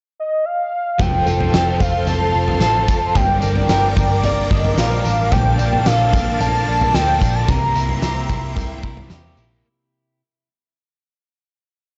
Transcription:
0.19 soft synth lead D#5
0.45 soft synth lead F5
0.99 picked electric bass F1, overdriven electric guitar F3 C4 F4, string machine A4 C5 F5 C6, soft synth lead G5, kick, floor tom, tambourine
1.03 overdriven electric guitar A4
1.24 picked electric bass F1, overdriven electric guitar F4 A4, synth bell A4, tambourine
1.30 overdriven electric guitar C4
1.40 floor tom
1.52 picked electric bass F1, overdriven electric guitar F3 C4 F4, snare, tambourine
1.56 overdriven electric guitar A4
1.78 picked electric bass F1, overdriven electric guitar F4 A4, soft synth lead F5, kick, floor tom, tambourine
1.84 overdriven electric guitar C4
2.05 picked electric bass F1, overdriven electric guitar F3 C4, soft synth lead A5, floor tom, tambourine
2.09 overdriven electric guitar F4 A4
2.33 picked electric bass F1, overdriven electric guitar F4 A4
2.38 overdriven electric guitar C4
2.48 floor tom
2.61 picked electric bass A1, overdriven electric guitar F3 C4 F4 A4, snare, tambourine
2.87 picked electric bass F1, overdriven electric guitar F4 A4, kick, tambourine
2.93 overdriven electric guitar C4
3.14 picked electric bass G1, overdriven electric guitar G2 D3 G3 A#3 D4 A#4, string machine A#4 D5 G5 D6, soft synth lead G5, kick, floor tom, tambourine
3.41 picked electric bass G1, overdriven electric guitar A#3 D4 A#4, tambourine
3.47 overdriven electric guitar G3
3.56 floor tom
3.68 picked electric bass G1, overdriven electric guitar G2 D3 G3 A#3 D4 A#4, soft synth lead G5, snare, tambourine
3.95 picked electric bass G1, overdriven electric guitar A#3 D4 A#4, kick, floor tom, tambourine
4.01 overdriven electric guitar G3
4.22 picked electric bass G1, overdriven electric guitar G3 A#3 D4, soft synth lead D5, floor tom, tambourine
4.28 overdriven electric guitar A#4
4.50 picked electric bass G1, overdriven electric guitar A#3 D4 A#4, soft synth lead D#5, kick
4.56 overdriven electric guitar G3
4.64 floor tom
4.77 picked electric bass A#1, overdriven electric guitar G2 D3 G3 A#3 D4, soft synth lead F5, snare, tambourine
4.81 overdriven electric guitar A#4
5.03 picked electric bass A1, overdriven electric guitar D4 A#4, tambourine
5.07 overdriven electric guitar G3 A#3
5.31 picked electric bass A#1, overdriven electric guitar A#2 D3 F3 A#3 D4, string machine A#3 F5 A5, soft synth lead G5, kick, floor tom, tambourine
5.35 overdriven electric guitar A4
5.58 picked electric bass A#1, overdriven electric guitar D4 A4, synth bell D5, tambourine
5.62 overdriven electric guitar F3 A#3
5.73 floor tom
5.85 picked electric bass A#1, overdriven electric guitar A#2 D3 F3 A#3 D4 A4, soft synth lead F5, snare, tambourine
6.11 picked electric bass A#1, overdriven electric guitar D4 A4, synth bell G5, kick, floor tom, tambourine
6.16 overdriven electric guitar F3 A#3
6.38 picked electric bass A#1, overdriven electric guitar F3 A#3, soft synth lead A5, floor tom, tambourine
6.43 overdriven electric guitar D4 A4
6.67 picked electric bass A#1, overdriven electric guitar A#3 D4 A4
6.72 overdriven electric guitar F3
6.81 floor tom
6.93 picked electric bass D2, overdriven electric guitar A#2 D3 F3 A#3 D4, soft synth lead G5, snare, tambourine
6.97 overdriven electric guitar A4
7.19 picked electric bass A#1, overdriven electric guitar D4 A4, kick, tambourine
7.24 overdriven electric guitar F3 A#3
7.35 soft synth lead A5
7.47 picked electric bass C2, overdriven electric guitar C3 G3 A#3 E4 G4, string machine E5 G5 C6, soft synth lead A#5, kick, floor tom, tambourine
7.73 picked electric bass C2, overdriven electric guitar E4 G4, tambourine
7.79 overdriven electric guitar A#3
7.89 floor tom
8.01 picked electric bass C2, overdriven electric guitar C3 G3 A#3 E4 G4, snare, tambourine
8.28 picked electric bass C2, overdriven electric guitar E4 G4, kick, floor tom, tambourine
8.33 overdriven electric guitar A#3
8.54 picked electric bass C2, overdriven electric guitar G3 A#3, kick, floor tom, tambourine
8.58 overdriven electric guitar E4 G4
8.82 picked electric bass C2, overdriven electric guitar E4 G4, synth bell A#5, kick
8.88 overdriven electric guitar A#3
8.97 floor tom
9.09 picked electric bass E2, overdriven electric guitar C3 G3 A#3 E4 G4, snare, tambourine
9.36 picked electric bass A#1, overdriven electric guitar E4 G4, tambourine
9.42 overdriven electric guitar A#3

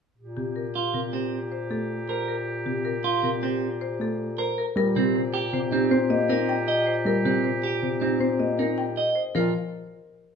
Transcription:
0.18 bass clarinet A#2, clarinet G4
0.37 grand piano C3, marimba G4
0.56 marimba A#4
0.76 clean electric guitar F4
0.93 grand piano C3, marimba A#4
1.13 clean electric guitar C4, marimba G4
1.52 marimba C5
1.70 grand piano A3, marimba A4
2.09 clean electric guitar A#4, marimba C5
2.28 marimba A#4
2.65 grand piano C3, marimba G4
2.85 marimba A#4
3.04 clean electric guitar F4
3.23 grand piano C3, marimba A#4
3.43 clean electric guitar C4, marimba G4
3.81 marimba C5
3.99 grand piano A3, marimba A4
4.38 clean electric guitar A#4, marimba C5
4.58 marimba A#4
4.76 bass clarinet A#2, grand piano G3, clarinet G4, marimba A#4
4.96 grand piano C3, clean electric guitar C4, marimba G4
5.16 marimba C5
5.34 clean electric guitar G4
5.53 grand piano C3, marimba C5
5.71 clean electric guitar C4, grand piano D#4, marimba G4
5.91 grand piano C4, marimba C5
6.10 grand piano A#3, marimba D#5
6.29 grand piano C4, clean electric guitar D#4, marimba A#4
6.49 marimba G5
6.68 marimba D#5, clean electric guitar D#5
6.86 marimba C5
7.05 grand piano G3, marimba A#4
7.25 grand piano C3, clean electric guitar C4, marimba G4
7.44 marimba C5
7.63 clean electric guitar G4
7.82 grand piano C3, marimba C5
8.01 clean electric guitar C4, grand piano D#4, marimba G4
8.20 grand piano C4, marimba C5
8.39 grand piano A#3, marimba D#5
8.58 grand piano C4, clean electric guitar D#4, marimba A#4
8.78 marimba G5
8.97 marimba D#5, clean electric guitar D#5
9.15 marimba C5
9.35 bass clarinet A#2, grand piano F3, clean electric guitar F4, marimba A#4

